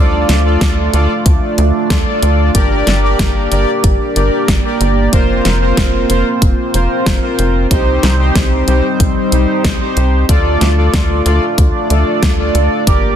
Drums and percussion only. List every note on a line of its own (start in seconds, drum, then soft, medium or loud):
0.29 snare medium
0.29 closed hi-hat medium
0.61 kick loud
0.61 snare loud
0.61 closed hi-hat medium
0.94 closed hi-hat medium
1.26 kick loud
1.26 closed hi-hat medium
1.58 closed hi-hat medium
1.90 kick loud
1.90 snare loud
1.90 closed hi-hat medium
2.23 closed hi-hat medium
2.55 kick loud
2.55 closed hi-hat medium
2.87 snare medium
2.87 closed hi-hat medium
3.19 kick loud
3.19 snare loud
3.19 closed hi-hat medium
3.52 closed hi-hat medium
3.84 kick loud
3.84 closed hi-hat medium
4.16 closed hi-hat medium
4.48 kick loud
4.48 snare loud
4.48 closed hi-hat medium
4.81 closed hi-hat medium
5.13 kick loud
5.13 closed hi-hat medium
5.45 snare medium
5.45 closed hi-hat medium
5.77 kick loud
5.77 snare loud
5.77 closed hi-hat medium
6.10 closed hi-hat medium
6.42 kick loud
6.42 closed hi-hat medium
6.74 closed hi-hat medium
7.06 kick loud
7.06 snare loud
7.06 closed hi-hat medium
7.39 closed hi-hat medium
7.71 kick loud
7.71 closed hi-hat medium
8.03 snare medium
8.03 closed hi-hat medium
8.35 kick loud
8.35 snare loud
8.35 closed hi-hat medium
8.68 closed hi-hat medium
9.00 kick loud
9.00 closed hi-hat medium
9.32 closed hi-hat medium
9.64 kick loud
9.64 snare loud
9.64 closed hi-hat medium
9.97 closed hi-hat medium
10.29 kick loud
10.29 closed hi-hat loud
10.61 snare medium
10.61 closed hi-hat medium
10.94 kick loud
10.94 snare loud
10.94 closed hi-hat medium
11.26 closed hi-hat medium
11.58 kick loud
11.58 closed hi-hat loud
11.90 closed hi-hat medium
12.23 kick loud
12.23 snare loud
12.23 closed hi-hat loud
12.55 closed hi-hat medium
12.87 kick loud
12.87 closed hi-hat loud